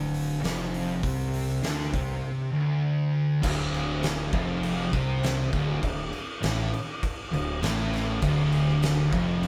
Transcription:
Already playing: D1 D2
0.14 open hi-hat
0.43 F1 F2, snare, open hi-hat
0.74 open hi-hat
1.03 C2 C3, kick, open hi-hat
1.34 open hi-hat
1.62 D2 D3, snare, open hi-hat
1.80 snare
1.92 C2 C3, kick, open hi-hat
2.54 D2
3.43 D1 D2, kick, crash
3.74 crash
4.03 snare, crash
4.33 F1 F2, kick, crash
4.63 crash
4.93 C2 C3, kick, crash
5.23 snare, crash
5.53 D1 D2, kick, crash
5.83 D1 D2, kick, crash
6.13 crash
6.43 A1 A2, snare, crash
6.74 crash
7.03 kick, crash
7.32 D1 D2, crash
7.62 A1 A2, snare, crash
7.93 snare, crash
8.22 D1 D2, kick, crash
8.52 crash
8.82 snare, crash
9.13 F1 F2, kick, crash
9.43 crash

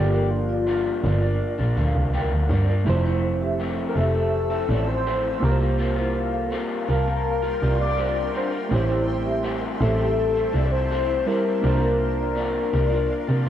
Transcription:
Already playing: G1 G2 D3 F3 A#3 D4 F4 G4 D5
0.11 F3 A#3 D4 A#4
0.30 F4
0.49 F4 D5
0.66 G2 D3 F3 A#3 D4
1.02 G1 D3 F3 A#3 D4 F4 D5
1.21 F3 A#3 D4
1.58 A#1 F3 A#3 D4
1.76 D2 D3 F3 A#3 D4 A4 F5
1.96 C2
2.13 D2 G2 D3 F3 A#3 D4 A#4 G5
2.32 D2
2.49 G2 D3 F3 A#3 D4 F4 D5
2.67 F3 A#3 D4
2.84 F1 F2 C3 E3 F3 A3 C4 E4 C5 A5 E6
2.89 C5
3.04 E3 A3 C4 E4 C5
3.42 G4 E5
3.59 F2 C3 E3 A3 C4
3.89 A#4
3.95 F1 C3 E3 A3 C4 G4 A4 E5
4.13 E3 A3 C4
4.50 E3 A3 C4
4.69 A1 C3 E3 A3 C4 F4 D5
4.88 C5
5.05 F2 C3 E3 A3 C4 E4 C5
5.40 C2 C3 G3 A#3 F4 G4 A#4 G5 C6
5.44 F4 A#4
5.52 C5
5.60 G3 A#3 F4
5.78 C3 G3 A#3 F4
5.96 G3 A#3 E4 F4 C5
6.33 A4 F5
6.51 C3 G3 A#3 F4
6.88 C2 C3 G3 A#3 F4 A#4 F5 A5
7.06 G3 A#3 F4
7.42 G3 A#3 F4
7.61 C2 C3 G3 A#3 F4 D5
7.81 D5
7.97 C3 G3 A#3 F4 C5
8.33 C3 G3 A#3 D4 F4 A#4 C5
8.51 G3 A#3 F4
8.69 A1 A2 E3 G3 A3 C4 E4 G4 E5 A5
8.74 C5
8.87 G3 C4 E4 C5
9.25 G4 E5
9.43 A2 E3 G3 C4 E4
9.79 A1 E3 G3 C4 E4 G4 A4 E5
9.98 G3 C4 E4
10.35 G3 C4 E4
10.52 C2 E3 G3 C4 E4 F4 D5
10.66 D5
10.72 C5
10.90 A2 E3 G3 C4 E4 C5
11.26 E3 G3 C4 E4 G4 A#4 C5
11.44 G3 C4 E4
11.61 C2 C3 F3 A#3 D4 F4 A#4 D5 F5
11.67 C5
11.80 F3 A#3 D4 A#4
12.19 F4 D5
12.35 C3 F3 A#3 D4
12.72 C2 C3 F3 A#3 D4 F4 D5
12.90 F3 A#3 D4
13.27 C3 F3 A#3 D4
13.45 C3

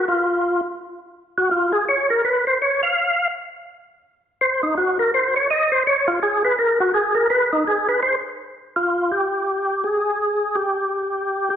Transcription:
0.08 F4
1.38 F#4
1.51 F4
1.73 G#4
1.89 C#5
2.10 A#4
2.25 B4
2.47 C5
2.62 C#5
2.83 F5
4.41 C5
4.63 D#4
4.78 F#4
4.99 A#4
5.14 C5
5.36 C#5
5.51 D#5
5.72 C5
5.87 C#5
6.08 F4
6.23 G#4
6.45 B4
6.59 A#4
6.80 F#4
6.94 G#4
7.15 A#4
7.30 B4
7.53 D#4
7.67 G#4
7.89 B4
8.03 C5
8.76 F4
9.12 G4
9.84 G#4
10.55 G4
11.50 G4

